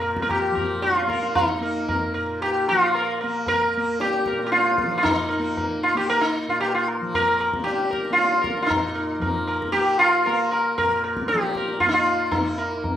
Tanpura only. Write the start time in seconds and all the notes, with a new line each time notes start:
Already playing: A#2 F3 A#3
0.51 F3
1.07 A#3
1.60 A#3
2.17 A#2
2.70 F3
3.23 A#3
3.77 A#3
4.32 A#2
4.86 F3
5.39 A#3
5.95 A#3
6.48 A#2
7.01 F3
7.56 A#3
8.10 A#3
8.65 A#2
9.19 F3
9.72 A#3
10.27 A#3
10.81 A#2
11.33 F3
11.86 A#3
12.41 A#3
12.93 A#2